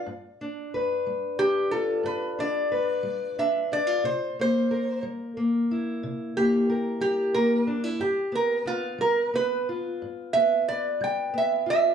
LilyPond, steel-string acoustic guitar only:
\new Staff \with { instrumentName = "Steel-string acoustic guitar" } { \time 12/8 \key g \mixolydian \tempo 4. = 60 << { r8 d'8 b'4 d'8 f'4 d'8 b'4 d'8 d'16 f'16 | r8 bes8 bes'4 bes8 e'4 bes8 bes'4 bes8 d'16 e'16 | r8 b8 b4 b8 f'4 b8 b'4 b8 f'8 | } \\ { g,4 r8 g4 r8 g,4 r8 g4 r8 | c4 r8 g4 r8 c4 r8 g4 r8 | g,4 r8 g4 r8 g,4 r8 g4 r8 | } >> }